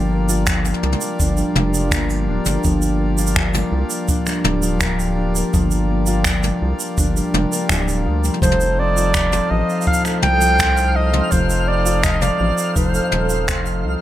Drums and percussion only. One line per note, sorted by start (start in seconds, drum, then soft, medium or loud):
0.29 shaker medium
0.47 finger snap medium
0.47 kick loud
0.47 shaker medium
0.65 mid tom soft
0.65 shaker medium
0.74 mid tom soft
0.83 mid tom soft
0.92 mid tom medium
1.01 shaker medium
1.20 kick loud
1.20 shaker medium
1.37 shaker medium
1.56 mid tom medium
1.74 shaker medium
1.91 finger snap medium
1.91 kick loud
1.91 shaker medium
2.10 shaker soft
2.45 mid tom medium
2.45 shaker medium
2.64 kick loud
2.64 shaker medium
2.82 shaker medium
3.18 shaker medium
3.27 shaker medium
3.36 finger snap loud
3.36 kick loud
3.54 mid tom medium
3.54 shaker soft
3.90 shaker medium
4.08 kick loud
4.08 shaker medium
4.26 finger snap soft
4.26 shaker medium
4.44 mid tom medium
4.63 shaker medium
4.81 finger snap loud
4.81 kick medium
4.81 shaker medium
5.00 shaker soft
5.36 shaker medium
5.54 kick loud
5.54 shaker medium
5.71 shaker medium
6.07 shaker medium
6.24 finger snap medium
6.24 kick medium
6.24 shaker medium
6.43 mid tom medium
6.43 shaker soft
6.80 shaker medium
6.98 kick loud
6.98 shaker medium
7.17 shaker medium
7.34 mid tom medium
7.53 shaker medium
7.69 finger snap medium
7.69 kick loud
7.69 shaker medium
7.88 shaker medium
8.24 mid tom soft
8.24 shaker medium
8.34 mid tom soft
8.42 kick loud
8.42 mid tom soft
8.42 shaker medium
8.51 mid tom soft
8.61 shaker soft
8.97 shaker medium
9.14 finger snap medium
9.14 kick loud
9.14 shaker medium
9.33 mid tom medium
9.33 shaker soft
9.69 shaker soft
9.82 shaker soft
9.87 kick loud
9.94 shaker medium
10.05 finger snap soft
10.05 shaker soft
10.22 mid tom medium
10.41 shaker medium
10.59 finger snap medium
10.59 kick loud
10.59 shaker medium
10.77 shaker medium
11.13 mid tom medium
11.31 kick loud
11.31 shaker medium
11.50 shaker medium
11.86 shaker medium
12.03 finger snap medium
12.03 kick loud
12.03 shaker medium
12.22 mid tom medium
12.22 shaker soft
12.58 shaker medium
12.76 kick loud
12.76 shaker medium
12.95 shaker medium
13.12 mid tom medium
13.30 shaker medium
13.48 finger snap medium
13.48 kick loud
13.48 shaker medium
13.66 shaker soft